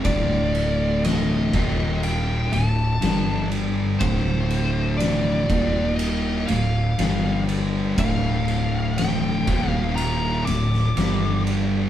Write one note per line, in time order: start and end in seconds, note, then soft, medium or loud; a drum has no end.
0.00 1.50 F3 medium
0.00 1.50 A3 medium
0.00 1.50 F4 medium
0.04 1.50 D1 loud
0.04 1.54 D2 loud
0.04 1.55 A2 loud
0.04 1.55 D3 loud
0.04 1.04 D5 medium
0.04 kick loud
0.04 ride loud
0.55 ride medium
1.05 2.06 D#5 medium
1.05 snare loud
1.05 ride medium
1.52 2.49 D#1 loud
1.52 2.51 D#2 medium
1.52 2.52 A#2 medium
1.52 2.51 D#3 medium
1.52 2.52 D#3 loud
1.52 2.51 A#3 medium
1.52 2.51 F4 medium
1.52 kick loud
1.52 ride medium
2.03 2.53 G5 medium
2.03 ride medium
2.51 2.99 D1 medium
2.51 2.92 D2 medium
2.51 2.92 A2 medium
2.51 3.01 D3 medium
2.51 3.01 A3 medium
2.51 3.01 E4 medium
2.51 3.48 A5 medium
2.51 ride medium
3.02 3.98 G1 medium
3.02 4.00 G2 medium
3.02 4.00 D3 medium
3.02 4.00 G3 medium
3.02 4.00 G3 loud
3.02 4.00 D4 medium
3.02 4.01 A4 medium
3.02 snare loud
3.02 ride medium
3.52 ride medium
3.98 5.46 D1 loud
3.98 5.48 D2 loud
3.98 5.49 A2 loud
3.98 5.47 D3 medium
3.98 5.49 D3 loud
3.98 5.47 A3 medium
3.98 5.47 E4 medium
3.98 4.95 C5 medium
3.98 kick loud
3.98 ride loud
4.50 ride medium
4.97 5.95 D5 loud
4.97 ride medium
5.02 snare loud
5.48 6.45 D#1 medium
5.48 6.47 D#2 medium
5.48 6.47 A#2 medium
5.48 6.47 D#3 medium
5.48 6.48 D#3 medium
5.48 6.48 A#3 medium
5.48 6.47 F4 medium
5.48 kick loud
5.48 ride medium
5.96 6.47 D#5 loud
5.96 ride medium
6.47 6.96 D1 medium
6.47 6.89 D2 medium
6.47 6.89 A2 medium
6.47 6.99 D3 medium
6.47 6.98 E3 medium
6.47 6.98 A3 medium
6.47 7.44 F5 medium
6.47 ride medium
6.98 7.94 G1 medium
6.98 7.96 G2 medium
6.98 7.97 D3 medium
6.98 7.97 G3 medium
6.98 7.97 G3 loud
6.98 7.97 D4 medium
6.98 7.97 A4 medium
6.98 snare loud
6.98 ride loud
7.49 ride medium
7.97 9.43 D1 loud
7.97 9.47 D2 loud
7.97 9.47 A2 loud
7.97 9.47 D3 loud
7.97 9.47 D3 medium
7.97 9.47 E3 medium
7.97 9.47 A3 medium
7.97 9.01 F5 medium
7.97 kick loud
7.97 ride loud
8.48 ride medium
8.98 9.70 G5 medium
8.98 snare loud
8.98 ride medium
9.47 10.43 D#1 loud
9.47 10.45 D#2 medium
9.47 10.45 A#2 medium
9.47 10.45 D#3 medium
9.47 10.47 D#3 medium
9.47 10.47 A#3 medium
9.47 10.47 F4 medium
9.47 kick loud
9.47 ride medium
9.70 10.00 F5 medium
9.96 10.45 A#5 medium
9.96 ride medium
10.45 10.94 D1 medium
10.45 10.87 D2 medium
10.45 10.87 A2 medium
10.45 10.97 D3 medium
10.45 10.97 A3 medium
10.45 10.97 E4 medium
10.45 11.42 D6 loud
10.45 ride medium
10.73 snare soft
10.96 11.89 G1 medium
10.96 11.89 G2 medium
10.96 11.89 D3 loud
10.96 11.89 G3 medium
10.96 11.89 D4 medium
10.96 11.89 A4 medium
10.96 snare loud
10.96 ride medium
11.47 ride medium